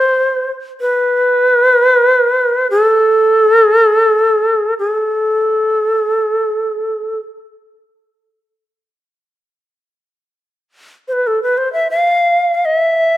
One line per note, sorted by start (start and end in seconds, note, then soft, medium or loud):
0.00 0.49 C5 medium
0.81 2.68 B4 medium
2.71 4.74 A4 medium
4.79 7.19 A4 medium
11.08 11.14 C5 soft
11.13 11.28 B4 medium
11.27 11.42 A4 medium
11.43 11.59 B4 medium
11.58 11.72 C5 medium
11.73 11.88 E5 medium
11.90 12.54 F5 medium
12.54 12.67 F5 medium
12.65 13.17 E5 medium